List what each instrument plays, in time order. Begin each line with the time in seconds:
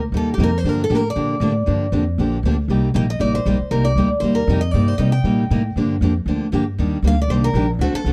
Already playing: upright bass D2
0.12 upright bass D#2, steel-string acoustic guitar C3 G3 A#3 D#4 G4
0.17 steel-string acoustic guitar A4
0.34 steel-string acoustic guitar G4
0.38 upright bass F2, steel-string acoustic guitar C3 G3 A#3 D#4 G4
0.43 steel-string acoustic guitar A#4
0.58 steel-string acoustic guitar C5
0.64 upright bass G2, steel-string acoustic guitar D3 F3 A#3 D4 G4
0.69 steel-string acoustic guitar A#4
0.84 steel-string acoustic guitar A4
0.90 upright bass A2, steel-string acoustic guitar D3 F3 A#3 D4 G4
0.95 steel-string acoustic guitar A#4
1.10 steel-string acoustic guitar D5
1.16 upright bass A#2, steel-string acoustic guitar D3 F3 A#3 D4 G4
1.40 upright bass A2, steel-string acoustic guitar D3 F3 A#3 D4 G4
1.66 upright bass G2, steel-string acoustic guitar D3 F3 A#3 D4 G4
1.92 upright bass F2, steel-string acoustic guitar D3 F3 A#3 D4 G4
2.18 upright bass A#1, steel-string acoustic guitar D3 F3 A#3 D4 G4
2.43 upright bass D2, steel-string acoustic guitar D3 F3 A#3 D4 G4
2.68 upright bass C2, steel-string acoustic guitar C3 G3 A#3 D#4 G4
2.94 upright bass A#1, steel-string acoustic guitar C3 G3 A#3 D#4 G4 G5
3.10 steel-string acoustic guitar D#5
3.19 upright bass A1, steel-string acoustic guitar C3 G3 A#3 D#4 G4 D5
3.35 steel-string acoustic guitar C5
3.45 upright bass A#1, steel-string acoustic guitar C3 G3 A#3 D#4 G4
3.60 muted upright bass stroke
3.71 upright bass C2, steel-string acoustic guitar C3 G3 A#3 D#4 G4 A#4
3.85 steel-string acoustic guitar D5
3.96 upright bass D2, steel-string acoustic guitar C3 G3 A#3 D#4 G4
4.20 upright bass D#2, steel-string acoustic guitar C3 G3 A#3 D#4 G4 C5
4.35 steel-string acoustic guitar A#4
4.47 upright bass F2, steel-string acoustic guitar C3 G3 A#3 D#4 G4
4.61 steel-string acoustic guitar D#5
4.71 upright bass G2, steel-string acoustic guitar C3 G3 A#3 D#4 G4 D5
4.88 steel-string acoustic guitar C5
4.98 upright bass C3, steel-string acoustic guitar C3 G3 A#3 D#4 G4 D#5
5.12 steel-string acoustic guitar G5
5.24 upright bass A#2, steel-string acoustic guitar C3 G3 A#3 D#4 G4
5.50 upright bass A2, steel-string acoustic guitar C3 G3 A#3 D#4 G4
5.76 upright bass G2, steel-string acoustic guitar D3 F3 A#3 D4 G4
6.01 upright bass F2, steel-string acoustic guitar D3 F3 A#3 D4 G4
6.26 upright bass D2, steel-string acoustic guitar D3 F3 A#3 D4 G4
6.52 upright bass G2, steel-string acoustic guitar D3 F3 A#3 D4 G4
6.78 upright bass D#2, steel-string acoustic guitar D#3 G3 A#3 D4 G4
7.02 upright bass D2, steel-string acoustic guitar D#3 G3 A#3 D4 G4
7.07 steel-string acoustic guitar F5
7.22 steel-string acoustic guitar D5
7.28 upright bass C2, steel-string acoustic guitar D#3 G3 A#3 D4 G4 C5
7.44 steel-string acoustic guitar A#4
7.53 upright bass A#1, steel-string acoustic guitar D#3 G3 A#3 D4 G4
7.79 upright bass D2, steel-string acoustic guitar D3 A3 C4 F#4 A4
7.94 steel-string acoustic guitar A4, muted upright bass stroke
8.04 upright bass C2, steel-string acoustic guitar D3 A3 C4 F#4 A4